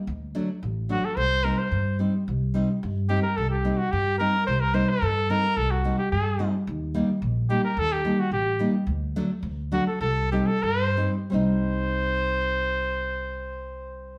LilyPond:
<<
  \new Staff \with { instrumentName = "Cornet" } { \time 2/4 \tempo 4 = 109 r4. fis'16 a'16 | c''8 bes'16 c''8. r8 | r4. g'16 bes'16 | a'16 g'8 fis'16 g'8 bes'8 |
c''16 bes'16 c''16 a'8. bes'8 | a'16 fis'8 g'16 a'8. r16 | r4. g'16 bes'16 | a'16 g'8 fis'16 g'8. r16 |
r4. fis'16 a'16 | a'8 g'16 a'16 c''8. r16 | c''2~ | c''2 | }
  \new Staff \with { instrumentName = "Nylon-string guitar" } { \time 2/4 r8 <fis a d'>16 r8. <fis a d'>16 r16 | r8 <g c' ees'>16 r8. <g c' ees'>16 r16 | r8 <g c' ees'>16 r8. <g c' ees'>16 r16 | r8 <g c' ees'>16 r8. <g c' ees'>16 r16 |
r8 <g c' ees'>16 r8. <g c' ees'>16 r16 | r8 <g c' ees'>16 r8. <g c' ees'>16 r16 | r8 <g bes ees'>16 r8. <g bes ees'>16 r16 | r8 <g bes ees'>16 r8. <g bes ees'>16 r16 |
r8 <fis a d'>16 r8. <fis a d'>16 r16 | r8 <g c' ees'>16 r8. <g c' ees'>16 r16 | <g c' ees'>2~ | <g c' ees'>2 | }
  \new Staff \with { instrumentName = "Upright bass" } { \clef bass \time 2/4 d,4 a,,4 | c,4 g,4 | c,4 g,4 | c,4 g,4 |
c,4 g,4 | c,4 g,4 | ees,4 bes,,4 | ees,4 a,,4 |
d,4 d,4 | c,4 g,4 | c,2~ | c,2 | }
>>